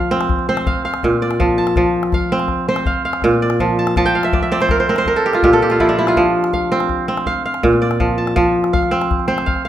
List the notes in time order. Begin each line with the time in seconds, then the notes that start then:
Already playing: F3 D5 F5 A5
0.11 C4, calabash click
0.21 calabash click
0.29 calabash thump
0.39 calabash click
0.49 C4 C5
0.57 calabash click
0.66 F5, calabash thump, calabash click
0.85 F5, calabash click
0.94 calabash click
1.03 A#2, calabash thump
1.22 D5, calabash click
1.31 calabash click
1.40 F3, calabash thump
1.58 A5
1.67 calabash click
1.76 F3, calabash thump, calabash click
2.03 calabash click
2.12 F5, calabash thump
2.32 C4
2.39 calabash click
2.48 calabash thump, calabash click
2.69 C4 C5
2.76 calabash click
2.86 F5, calabash thump
3.05 F5
3.13 calabash click
3.22 A#2, calabash thump, calabash click
3.31 calabash click
3.42 D5
3.50 calabash click
3.60 F3, calabash thump
3.79 A5
3.87 calabash click
3.96 F3 A5, calabash thump, calabash click
4.06 G5
4.15 F5
4.23 E5, calabash click
4.33 D5, calabash thump
4.43 E5
4.52 C4 D5
4.61 C5, calabash click
4.69 A#4, calabash thump, calabash click
4.80 C5
4.89 C4 A#4
4.96 C5, calabash click
5.06 A#4, calabash thump
5.16 A4
5.26 G4
5.33 F4, calabash click
5.43 A#2 G4, calabash thump, calabash click
5.52 A4, calabash click
5.62 G4
5.70 F4, calabash click
5.80 F3 E4, calabash thump
5.89 D4
5.99 E4
6.07 F4, calabash click
6.16 F3, calabash thump, calabash click
6.44 calabash click
6.53 F5, calabash thump
6.72 C4
6.80 calabash click
6.89 calabash thump, calabash click
7.08 C4
7.17 calabash click
7.26 F5, calabash thump
7.45 F5
7.54 calabash click
7.63 A#2, calabash thump, calabash click
7.73 calabash click
7.82 D5
7.91 calabash click
8.00 F3, calabash thump
8.18 A5
8.27 calabash click
8.36 F3, calabash thump
8.46 calabash click
8.55 calabash click
8.64 calabash click
8.73 F5, calabash thump, calabash click
8.83 calabash click
8.91 C4, calabash click
9.02 calabash click
9.11 calabash thump
9.20 calabash click
9.28 C4 C5
9.38 calabash click
9.46 F5, calabash thump, calabash click
9.56 calabash click
9.65 F5